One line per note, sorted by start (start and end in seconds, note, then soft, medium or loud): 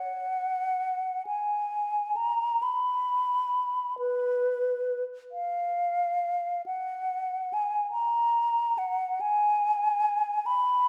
0.00 1.25 F#5 medium
1.27 2.18 G#5 soft
2.16 2.64 A#5 soft
2.63 3.98 B5 medium
3.99 5.04 B4 soft
5.32 6.62 F5 medium
6.66 7.55 F#5 medium
7.53 7.91 G#5 soft
7.92 8.80 A#5 medium
8.78 9.22 F#5 medium
9.21 10.47 G#5 medium
10.46 10.88 B5 medium